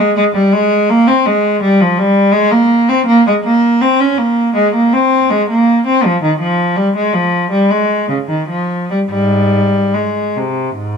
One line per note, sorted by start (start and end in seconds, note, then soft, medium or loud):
0.00 0.15 G#3 medium
0.16 0.24 G#3 medium
0.35 0.53 G3 medium
0.52 0.90 G#3 medium
0.89 1.08 A#3 medium
1.08 1.27 C4 medium
1.26 1.63 G#3 medium
1.62 1.81 G3 medium
1.81 1.99 F3 medium
1.98 2.34 G3 medium
2.32 2.51 G#3 medium
2.51 2.88 A#3 medium
2.89 3.07 C4 medium
3.06 3.25 A#3 medium
3.27 3.34 G#3 medium
3.44 3.80 A#3 medium
3.81 4.00 C4 medium
4.01 4.19 C#4 medium
4.18 4.55 A#3 medium
4.55 4.73 G#3 medium
4.75 4.93 A#3 medium
4.93 5.30 C4 medium
5.30 5.48 G#3 medium
5.50 5.85 A#3 medium
5.87 6.04 C4 medium
6.05 6.22 F3 medium
6.23 6.40 D#3 medium
6.40 6.75 F3 medium
6.76 6.94 G3 medium
6.96 7.14 G#3 medium
7.14 7.52 F3 medium
7.51 7.70 G3 medium
7.70 8.09 G#3 medium
8.09 8.17 C#3 medium
8.29 8.49 D#3 soft
8.49 8.89 F3 medium
8.91 8.99 G3 medium
9.10 9.91 G#2 medium
9.10 9.93 G3 medium
9.94 10.37 G#3 medium
10.37 10.79 C3 soft
10.78 10.97 G#2 soft